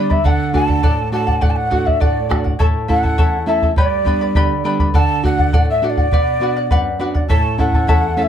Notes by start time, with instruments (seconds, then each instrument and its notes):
Already playing: nylon-string guitar D3 G3 B3 D4, quena D5
0.10 charango B4 D5 B5, quena E5, bombo low
0.24 nylon-string guitar D3, charango A4 D5 F#5, quena G5, bombo low
0.30 quena F#5
0.53 nylon-string guitar A3 D4 F#4, charango A4 D5 F#5, quena G#5, bombo low
0.66 charango D5 F#5, quena A5, bombo low
0.83 nylon-string guitar A2, charango A4 D5 F#5, bombo low
1.12 nylon-string guitar A3 D4 F#4, charango A4 D5 F#5, quena A5
1.27 charango D5 F#5, bombo low
1.41 nylon-string guitar A2, charango A4 D5 F#5, quena F#5, bombo low
1.50 quena A5
1.57 quena F#5
1.70 nylon-string guitar A3 D4 F#4, charango A4 D5 F#5, bombo low
1.85 charango D5 F#5, quena E5, bombo low
2.00 nylon-string guitar A2, charango A4 D5 F#5, quena D5, bombo low
2.29 nylon-string guitar A3 D4 F#4, charango A4 D5 F#5, bombo rim, bombo low
2.44 charango D5 F#5, bombo low
2.59 nylon-string guitar A2, charango E4 A4 C#5 E5 A5, quena A5, bombo low
2.88 nylon-string guitar A3 C#4 E4, charango E4 A4 E5 A5, quena F#5, bombo low
3.03 charango E4 A4 A5, bombo low
3.18 nylon-string guitar E2, charango E4 A4 C#5 E5 A5, bombo low
3.46 nylon-string guitar A3 C#4 E4, charango E4 A4 E5 A5, quena E5
3.62 charango E4 A4 A5, bombo low
3.76 nylon-string guitar G2, charango G4 B4 D5 G5 B5, quena D5, bombo low
4.05 nylon-string guitar G3 B3 D4, charango B4 D5 G5 B5, bombo low
4.21 charango B4 D5 B5
4.35 nylon-string guitar D3, charango G4 B4 D5 G5 B5, bombo low
4.64 nylon-string guitar G3 B3 D4, charango B4 D5 G5 B5
4.80 charango B4 D5 B5, bombo low
4.94 nylon-string guitar D3, charango A4 D5 F#5, quena A5, bombo low
5.23 nylon-string guitar A3 D4 F#4, charango A4 D5 F#5, quena F#5, bombo low
5.39 charango D5 F#5, bombo low
5.53 nylon-string guitar A2, charango A4 D5 F#5, bombo low
5.70 quena E5
5.82 nylon-string guitar A3 D4 F#4, charango A4 D5 F#5, quena E5
5.90 quena D5
5.97 charango D5 F#5, bombo low
6.12 nylon-string guitar B2, charango B4 D5 F#5, bombo low
6.40 nylon-string guitar B3 D4 F#4, charango B4 D5 F#5
6.56 charango D5 F#5
6.71 nylon-string guitar F#2, charango B4 D5 F#5, bombo low
6.99 nylon-string guitar B3 D4 F#4, charango B4 D5 F#5
7.15 charango D5 F#5, bombo low
7.29 nylon-string guitar A2, charango E4 A4 C#5 E5 A5, quena A5, bombo low
7.58 nylon-string guitar A3 C#4 E4, charango E4 A4 E5 A5, quena F#5, bombo low
7.73 charango E4 A4 A5, bombo low
7.87 nylon-string guitar E2, charango E4 A4 C#5 E5 A5, bombo low
8.17 nylon-string guitar A3 C#4 E4, charango E4 A4 E5 A5, quena F#5
8.22 quena E5